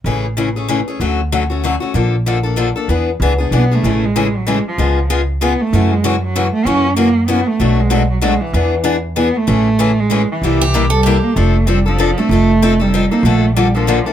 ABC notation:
X:1
M:3/4
L:1/8
Q:"Swing" 1/4=192
K:A
V:1 name="Steel-string acoustic guitar"
z6 | z6 | z6 | z6 |
z6 | z6 | z6 | z6 |
z6 | z6 | z6 | z =G2 A G2 |
[K:F] z6 | z6 | z6 |]
V:2 name="Steel-string acoustic guitar"
[C,E,A,CG] z [C,E,A,CG] [A,CG] [C,E,A,CG] [A,CG] | [D,F,A,CF] z [D,F,A,CF] [A,CF] [D,F,A,CF] [A,CF] | [D,=F,_B,DA] z [D,F,B,DA] [B,DA] [D,F,B,DA] [B,DA] | [E,B,DG] z [E,B,DG] [B,DG] [E,B,DG] [B,DG] |
[C,E,A,CG] z [C,E,A,CG] z [C,E,A,CG] z | [C,G,B,^EG] z [C,G,B,EG] z [C,G,B,EG] z | [C,E,A,CF] z [C,E,A,CF] z [C,E,A,CF] z | [C,E,^A,CF] z [C,E,A,CF] z [C,E,A,CF] z |
[B,,F,A,DF] z [B,,F,A,DF] z [B,,F,A,DF] z | [E,B,DG] z [E,B,DG] z [E,B,DG] z | [C,E,A,CG] z [C,E,A,CG] z [C,E,A,CG] z | [=C,=G,_B,E=G] z [C,G,B,EG] z [C,G,B,EG] z |
[K:F] [F,CDA] z [F,CDA] [CDA] [F,CDA] [CDA] | [F,C_EA] z [F,CEA] [CEA] [F,CEA] [CEA] | [D,F,B,DA] z [D,F,B,DA] [B,DA] [D,F,B,DA] [B,DA] |]
V:3 name="Cello" clef=bass
z6 | z6 | z6 | z4 B, A,- |
A, G,2 F, G, =F,- | =F,2 z2 B, A,- | A, G,2 F,2 A, | C2 ^A,2 B, =A,- |
A, G,2 F, G, E,- | E,2 z2 B, A,- | A,3 G,2 E,- | E,3 =G,2 _B, |
[K:F] A,2 G, F,2 A,- | A,3 G,2 B, | A,2 G, F,2 E, |]
V:4 name="Upright bass" clef=bass
A,,,6 | D,,6 | _B,,,6 | E,,2 C,,2 B,,,2 |
A,,,6 | C,,6 | F,,6 | F,,6 |
B,,,6 | E,,6 | A,,,6 | =C,,6 |
[K:F] F,,,6 | F,,,6 | B,,,6 |]